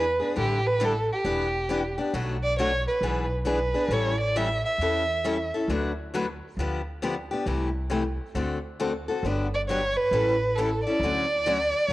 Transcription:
Already playing: upright bass E2, violin B4
0.19 steel-string acoustic guitar B3 D4 G#4
0.36 upright bass A1, steel-string acoustic guitar D3 G3 D4 E4 A4, violin G4
0.66 violin B4
0.80 steel-string acoustic guitar D3 G3 D4 E4 A4
0.84 violin A4
1.12 violin G4
1.24 upright bass E1, steel-string acoustic guitar E3 B3 D4 G4
1.69 steel-string acoustic guitar E3 B3 D4 G4
1.98 steel-string acoustic guitar B3 D4 G4
2.13 upright bass B1, steel-string acoustic guitar B2 F#3 A3 D4 F#4
2.43 violin D5
2.59 steel-string acoustic guitar B2 F#3 A3 D4 F#4, violin C#5
2.87 violin B4
3.01 upright bass B1, steel-string acoustic guitar B2 E3 B3 D4 G#4
3.45 steel-string acoustic guitar B2 E3 B3 D4 G#4, violin B4
3.74 steel-string acoustic guitar B3 D4 G#4
3.89 upright bass A1, steel-string acoustic guitar E3 G3 C#4 A4
3.93 steel-string acoustic guitar E4, violin C#5
4.20 violin D5
4.36 steel-string acoustic guitar E3 G3 C#4 E4 A4, violin E5
4.65 violin E5
4.78 upright bass E2, steel-string acoustic guitar E3 G3 C#4 E4
4.83 steel-string acoustic guitar A4
5.25 steel-string acoustic guitar E3 G3 C#4 E4 A4
5.54 steel-string acoustic guitar C#4 E4 A4
5.68 upright bass D2, steel-string acoustic guitar D3 F#3 A3 D4 F#4 B4
6.14 steel-string acoustic guitar D3 F#3 A3 D4 F#4 B4
6.57 upright bass D2, steel-string acoustic guitar D3 F3 B3 D4 G4
7.02 steel-string acoustic guitar D3 F3 B3 D4 G4
7.31 steel-string acoustic guitar B3 D4 G4
7.46 upright bass C2, steel-string acoustic guitar C3 E3 A3 E4 G4
7.90 steel-string acoustic guitar C3 E3 A3 E4 G4
8.35 upright bass D2, steel-string acoustic guitar D3 A3 C4 F#4 A4
8.80 steel-string acoustic guitar D3 A3 C4 F#4 A4
9.08 steel-string acoustic guitar C4 F#4 A4
9.23 upright bass G1, steel-string acoustic guitar D3 F#3 B3 D4 G4
9.54 violin D5
9.69 steel-string acoustic guitar D3 F#3 B3 D4 G4, violin C#5
9.96 violin B4
10.11 upright bass A1, steel-string acoustic guitar E3 G3 C#4 E4 A4
10.55 steel-string acoustic guitar E3 G3 C#4 E4 A4, violin A4
10.84 steel-string acoustic guitar E4 A4, violin D5
10.89 steel-string acoustic guitar C#4
11.00 upright bass D2, steel-string acoustic guitar D3
11.04 steel-string acoustic guitar F#3 A3 C#4 F#4
11.46 steel-string acoustic guitar D3 F#3 A3 C#4 F#4
11.89 upright bass A1

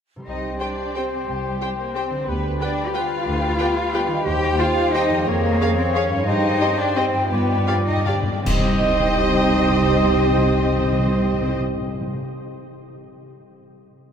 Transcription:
0.16 harp C3 G3 G4
0.22 cello section D#4, harp C5
0.27 double bass section C2, clarinet G4, oboe C5, violin section D#5, flute section G5
0.60 french horn section G3 C4, cello section D4, viola section G4 C5, violin section D5 G5
0.95 french horn section G3 C4, cello section C4, viola section G4 C5, violin section C5 G5
1.28 double bass section C2, cello section G3, violin section G4
1.61 french horn section G3 C4, viola section G4 C5, violin section G5
1.78 cello section A#3, violin section A#4
1.95 french horn section G3 C4, cello section C4, viola section G4 C5, violin section C5 G5
2.10 harp D3
2.15 harp G3
2.19 harp G4
2.24 double bass section D2, cello section B3, clarinet G4, harp B4, violin section B4
2.28 oboe B4, flute section G5
2.61 french horn section G3 B3, cello section D4, viola section G4 B4, violin section D5 G5
2.87 cello section G4
2.94 french horn section G3 B3, cello section F4, viola section G4 B4, violin section F5 G5
3.27 double bass section D2
3.59 french horn section G3 B3, viola section G4 B4, violin section G5
3.93 french horn section G3 B3, viola section G4 B4, violin section G5
4.07 harp D#3
4.12 harp G3
4.16 harp G4
4.21 harp C5
4.25 double bass section D#2, cello section G4, clarinet G4, oboe C5, flute section G5, violin section G5
4.59 french horn section G3 C4, cello section F4, viola section G4 C5, violin section F5 G5
4.93 french horn section G3 C4, cello section D#4, viola section G4 C5, violin section D#5 G5
5.09 harp F2
5.14 harp G#3
5.18 harp F4
5.22 harp C#5
5.27 double bass section F2, cello section A#3, clarinet G#4, violin section A#4, oboe C#5, flute section F5
5.60 french horn section G#3 C#4, viola section G#4 C#5, violin section F5
5.78 cello section C4, violin section C5
5.95 french horn section G#3 C#4, cello section C#4, viola section G#4 C#5, violin section C#5 F5
6.09 harp G2
6.14 harp G3
6.18 harp D#4
6.23 cello section D#4, harp C5
6.27 double bass section G2, clarinet G4, oboe C5, violin section D#5, flute section G5
6.61 french horn section G3 C4, viola section G4 C5, violin section D#5
6.78 cello section D4, violin section D5
6.96 french horn section G3 C4, cello section C4, viola section G4 C5, violin section C5 D#5
7.13 harp G2
7.17 harp G3
7.22 harp F4
7.26 harp D5
7.31 double bass section G2, timpani G2, cello section B3, clarinet F4, violin section B4, oboe D5
7.46 timpani G2
7.62 timpani G2
7.66 french horn section F3 D4, viola section G4 D5, violin section F5
7.70 timpani G2
7.79 timpani G2
7.86 timpani G2, cello section D#4, violin section D#5
7.97 timpani G2
8.06 timpani G2, french horn section F3 D4, cello section D4, viola section G4 D5, violin section D5 F5
8.14 timpani G2
8.23 timpani G2
8.31 timpani G2
8.45 double bass section C2, timpani C3, harp C3, cello section C4, french horn section D#4 G4, clarinet G4, viola section G4 C5, violin section C5 D#5, oboe D#5, flute section G5, concert bass drum, crash
8.52 timpani C3, harp G3
8.59 timpani C3, harp C4
8.66 timpani C3, harp G4
8.73 timpani C3, harp D#5
8.80 timpani C3, harp G5
8.87 timpani C3
8.93 timpani C3
9.00 timpani C3
9.07 timpani C3
9.14 timpani C3
9.21 timpani C3
9.28 timpani C3
9.36 timpani C3
9.42 timpani C3
9.49 timpani C3
9.56 timpani C3
9.63 timpani C3
9.70 timpani C3
9.76 timpani C3
9.83 timpani C3
9.90 timpani C3
9.96 timpani C3
10.03 timpani C3
10.10 timpani C3
10.17 timpani C3
10.24 timpani C3
10.31 timpani C3
10.38 timpani C3
10.44 timpani C3
10.58 timpani C3
10.65 timpani C3
10.72 timpani C3
10.79 timpani C3
10.86 timpani C3
10.92 timpani C3
10.99 timpani C3
11.06 timpani C3
11.13 timpani C3
11.20 timpani C3
11.27 timpani C3
11.34 timpani C3
11.41 timpani C3
11.47 timpani C3
11.54 timpani C3
11.60 timpani C3
11.67 timpani C3
11.75 timpani C3
11.81 timpani C3
11.87 timpani C3
11.94 timpani C3
12.01 timpani C3
12.07 timpani C3
12.14 timpani C3
12.21 timpani C3

